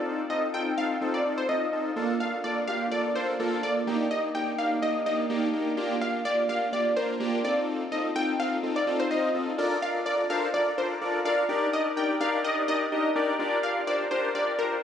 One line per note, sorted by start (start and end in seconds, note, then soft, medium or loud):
0.00 0.21 C4 medium
0.00 0.21 D#4 medium
0.00 0.21 F4 medium
0.00 0.21 A4 medium
0.30 0.48 C4 medium
0.30 0.48 D#4 medium
0.30 0.48 F4 medium
0.30 0.48 A4 medium
0.30 0.40 D#5 medium
0.54 0.72 C4 medium
0.54 0.72 D#4 medium
0.54 0.72 F4 medium
0.54 0.72 A4 medium
0.54 0.72 G5 medium
0.77 0.96 C4 medium
0.77 0.96 D#4 medium
0.77 0.96 F4 medium
0.77 0.96 A4 medium
0.77 0.87 F5 medium
1.01 1.19 C4 loud
1.01 1.19 D#4 medium
1.01 1.19 F4 medium
1.01 1.20 A4 loud
1.14 1.23 D5 medium
1.25 1.43 C4 medium
1.25 1.43 D#4 medium
1.25 1.43 F4 medium
1.25 1.43 A4 medium
1.38 1.46 C5 medium
1.49 1.67 C4 medium
1.49 1.67 D#4 medium
1.49 1.67 F4 medium
1.49 1.67 A4 medium
1.49 1.83 D#5 medium
1.72 1.91 C4 medium
1.72 1.91 D#4 medium
1.72 1.91 F4 medium
1.72 1.91 A4 medium
1.96 2.14 A#3 loud
1.96 2.14 D4 loud
1.96 2.15 F4 loud
1.96 2.15 A4 loud
2.20 2.38 A#3 medium
2.20 2.38 D4 medium
2.20 2.38 F4 medium
2.20 2.38 A4 medium
2.20 2.30 F5 medium
2.44 2.62 A#3 medium
2.44 2.62 D4 medium
2.44 2.62 F4 medium
2.44 2.62 A4 medium
2.44 2.62 D5 medium
2.67 2.86 A#3 medium
2.67 2.86 D4 medium
2.67 2.86 F4 medium
2.67 2.86 G4 medium
2.67 2.77 F5 medium
2.91 3.10 A#3 medium
2.91 3.10 D4 medium
2.91 3.10 F4 medium
2.91 3.10 A4 medium
2.91 3.10 D5 medium
3.15 3.34 A#3 medium
3.15 3.34 D4 medium
3.15 3.34 F4 medium
3.15 3.34 A4 loud
3.15 3.25 C5 medium
3.39 3.57 A#3 loud
3.39 3.58 D4 loud
3.39 3.58 F4 loud
3.39 3.58 A4 loud
3.63 3.81 A#3 medium
3.63 3.81 D4 medium
3.63 3.81 F4 medium
3.63 3.82 A4 medium
3.63 3.73 D5 medium
3.87 4.05 A#3 loud
3.87 4.05 D4 loud
3.87 4.05 D#4 loud
3.87 4.05 G4 loud
4.11 4.29 A#3 medium
4.11 4.29 D4 medium
4.11 4.29 D#4 medium
4.11 4.29 G4 medium
4.11 4.21 D#5 medium
4.34 4.53 A#3 medium
4.34 4.53 D4 medium
4.34 4.53 D#4 medium
4.34 4.53 G4 medium
4.34 4.53 G5 medium
4.58 4.77 A#3 medium
4.58 4.77 D4 medium
4.58 4.77 D#4 medium
4.58 4.77 G4 medium
4.58 4.68 F5 medium
4.82 5.00 A#3 medium
4.82 5.00 D4 medium
4.82 5.00 D#4 medium
4.82 5.00 G4 medium
4.82 5.01 D#5 medium
5.06 5.24 A#3 medium
5.06 5.24 D4 medium
5.06 5.24 D#4 medium
5.06 5.24 G4 loud
5.06 5.16 D#5 medium
5.29 5.48 A#3 loud
5.29 5.48 D4 loud
5.29 5.48 D#4 loud
5.29 5.48 G4 loud
5.53 5.71 A#3 medium
5.53 5.72 D4 medium
5.53 5.72 D#4 medium
5.53 5.72 G4 loud
5.77 5.95 A#3 loud
5.77 5.95 D4 loud
5.77 5.95 F4 loud
5.77 5.95 G4 loud
6.01 6.19 A#3 medium
6.01 6.19 D4 medium
6.01 6.19 F4 medium
6.01 6.19 G4 medium
6.01 6.11 F5 medium
6.25 6.43 A#3 medium
6.25 6.43 D4 medium
6.25 6.43 F4 medium
6.25 6.43 G4 medium
6.25 6.44 D5 loud
6.49 6.67 A#3 medium
6.49 6.67 D4 medium
6.49 6.67 F4 medium
6.49 6.67 G4 medium
6.49 6.59 F5 medium
6.72 6.91 A#3 medium
6.72 6.91 D4 medium
6.72 6.91 F4 medium
6.72 6.91 G4 medium
6.72 6.91 D5 medium
6.96 7.14 A#3 loud
6.96 7.14 D4 medium
6.96 7.15 F4 medium
6.96 7.15 A#4 loud
6.96 7.06 C5 medium
7.20 7.38 A#3 loud
7.20 7.38 D4 loud
7.20 7.38 F4 loud
7.20 7.38 G4 loud
7.44 7.83 C4 medium
7.44 7.83 D#4 medium
7.44 7.83 F4 medium
7.44 7.83 A4 medium
7.44 7.54 D5 medium
7.91 8.10 C4 medium
7.91 8.10 D#4 medium
7.91 8.10 F4 medium
7.91 8.10 A4 medium
7.91 8.02 D#5 medium
8.15 8.33 C4 medium
8.15 8.34 D#4 medium
8.15 8.34 F4 medium
8.15 8.34 A4 medium
8.15 8.34 G5 medium
8.39 8.57 C4 medium
8.39 8.57 D#4 medium
8.39 8.57 F4 medium
8.39 8.57 A4 medium
8.39 8.49 F5 medium
8.63 8.81 C4 medium
8.63 8.81 D#4 medium
8.63 8.81 F4 medium
8.63 8.81 A4 medium
8.76 8.85 D5 medium
8.87 9.05 C4 loud
8.87 9.05 D#4 medium
8.87 9.05 F4 medium
8.87 9.05 A4 loud
9.00 9.08 C5 medium
9.11 9.29 C4 loud
9.11 9.29 D#4 medium
9.11 9.29 F4 medium
9.11 9.29 C5 loud
9.11 9.45 D#5 medium
9.34 9.53 C4 medium
9.34 9.53 D#4 medium
9.34 9.53 F4 medium
9.34 9.53 A4 medium
9.58 9.76 D4 loud
9.58 9.76 F4 loud
9.58 9.76 A4 loud
9.58 9.77 A#4 loud
9.58 9.77 D5 loud
9.82 10.00 D4 medium
9.82 10.00 F4 medium
9.82 10.00 A4 medium
9.82 10.00 A#4 medium
9.82 10.00 D5 medium
9.82 9.92 F5 medium
10.06 10.24 D4 medium
10.06 10.24 F4 medium
10.06 10.24 A4 medium
10.06 10.24 A#4 medium
10.06 10.24 D5 medium
10.30 10.48 D4 loud
10.30 10.48 F4 loud
10.30 10.48 A4 loud
10.30 10.48 A#4 loud
10.30 10.48 C5 loud
10.30 10.40 F5 medium
10.54 10.72 D4 medium
10.54 10.72 F4 medium
10.54 10.72 A4 medium
10.54 10.72 A#4 medium
10.54 10.72 D5 medium
10.77 10.95 D4 medium
10.77 10.96 F4 medium
10.77 10.96 A4 medium
10.77 10.96 A#4 medium
10.77 10.88 C5 medium
10.77 10.96 D5 medium
11.01 11.19 D4 medium
11.01 11.19 F4 medium
11.01 11.19 A4 medium
11.01 11.19 A#4 medium
11.01 11.20 D5 loud
11.25 11.43 D4 loud
11.25 11.43 F4 loud
11.25 11.43 A4 medium
11.25 11.43 A#4 medium
11.25 11.35 D5 medium
11.25 11.43 F5 loud
11.49 11.67 D4 loud
11.49 11.67 D#4 loud
11.49 11.67 G4 loud
11.49 11.67 A#4 loud
11.49 11.67 D5 loud
11.72 11.91 D4 medium
11.72 11.91 D#4 medium
11.72 11.91 G4 medium
11.72 11.91 A#4 medium
11.72 11.91 D5 medium
11.72 11.83 D#5 medium
11.96 12.14 D4 medium
11.96 12.14 D#4 medium
11.96 12.15 G4 medium
11.96 12.15 A#4 medium
11.96 12.15 D5 medium
11.96 12.15 G5 medium
12.20 12.38 D4 loud
12.20 12.38 D#4 medium
12.20 12.38 G4 medium
12.20 12.39 A#4 medium
12.20 12.39 D5 loud
12.20 12.30 F5 medium
12.44 12.62 D4 medium
12.44 12.62 D#4 medium
12.44 12.62 G4 medium
12.44 12.62 A#4 medium
12.44 12.62 D5 medium
12.44 12.63 D#5 medium
12.68 12.86 D4 medium
12.68 12.86 D#4 medium
12.68 12.86 G4 medium
12.68 12.86 A#4 medium
12.68 12.86 D5 medium
12.68 12.78 D#5 medium
12.92 13.10 D4 loud
12.92 13.10 D#4 medium
12.92 13.10 G4 medium
12.92 13.10 A#4 medium
12.92 13.10 D#5 loud
13.15 13.34 D4 loud
13.15 13.34 D#4 loud
13.15 13.34 G4 loud
13.15 13.34 A#4 loud
13.15 13.34 D5 loud
13.39 13.57 D4 loud
13.39 13.57 F4 loud
13.39 13.57 G4 loud
13.39 13.58 A#4 loud
13.39 13.58 D5 loud
13.63 13.81 D4 medium
13.63 13.81 F4 medium
13.63 13.81 G4 medium
13.63 13.81 A#4 medium
13.63 13.81 D5 medium
13.63 13.73 F5 medium
13.87 14.05 D4 medium
13.87 14.05 F4 medium
13.87 14.05 G4 medium
13.87 14.05 A#4 medium
13.87 14.05 C5 medium
13.87 14.06 D5 loud
14.11 14.29 D4 loud
14.11 14.29 F4 loud
14.11 14.29 G4 loud
14.11 14.29 A#4 loud
14.11 14.21 C5 medium
14.11 14.29 C5 loud
14.35 14.53 D4 medium
14.35 14.53 F4 medium
14.35 14.53 G4 medium
14.35 14.53 A#4 medium
14.35 14.53 D5 medium
14.58 14.76 D4 medium
14.58 14.77 F4 medium
14.58 14.77 G4 medium
14.58 14.68 A#4 medium
14.58 14.77 A#4 medium
14.58 14.77 C5 medium